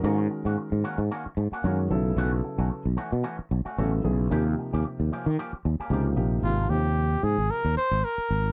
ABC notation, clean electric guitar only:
X:1
M:4/4
L:1/16
Q:"Swing 16ths" 1/4=112
K:Ebdor
V:1 name="Clean electric guitar"
[E,B,DG] z2 [B,DG] z2 [E,B,DG] z [E,B,DG] z2 [B,DG] [E,B,DG] z3 | [=E,=A,^C^F] z2 [A,CF] z2 [E,A,CF] z [E,A,CF] z2 [A,CF] [E,A,CF] z3 | [F,B,D=G] z2 [B,DG] z2 [F,B,DG] z [F,B,DG] z2 [B,DG] [F,B,DG] z3 | [K:Ab] z16 |]